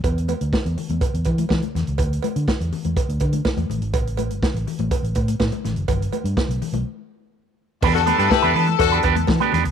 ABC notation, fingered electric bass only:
X:1
M:4/4
L:1/16
Q:1/4=123
K:Em
V:1 name="Fingered electric bass" clef=bass
E,,3 D,, z E,, z E,, z E,, E,2 E, z E,, ^C,, | D,,2 z D, z E,, z E,, z D,, D,2 z E,, A,,, ^G,,, | A,,,3 G,,, z A,,, z A,,, z A,,, A,,2 A,, z A,,, F,,, | G,,,2 z G,, z B,,, z B,,, z8 |
E,,3 G,, z E,, E,2 E,,2 E,,2 E, z E,, ^C,, |]